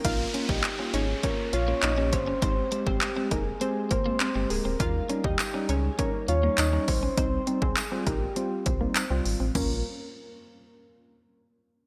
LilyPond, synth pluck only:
\new Staff \with { instrumentName = "Synth pluck" } { \time 4/4 \key bes \dorian \tempo 4 = 101 <f' f''>16 r8 <ees' ees''>16 r8 <des' des''>8 <des' des''>8 <f' f''>16 r16 <ees' ees''>16 r16 <des' des''>16 r16 | <c' c''>16 r8 <c' c''>16 r8 <bes bes'>8 <c' c''>8 <bes bes'>16 r16 <c' c''>16 r16 <aes aes'>16 r16 | <f' f''>16 r8 <ees' ees''>16 r8 <des' des''>8 <des' des''>8 <f' f''>16 r16 <ees' ees''>16 r16 <des' des''>16 r16 | <c' c''>16 r8 <c' c''>16 r8 <bes bes'>8 r8 <c' c''>8. r8. |
des'8 r2. r8 | }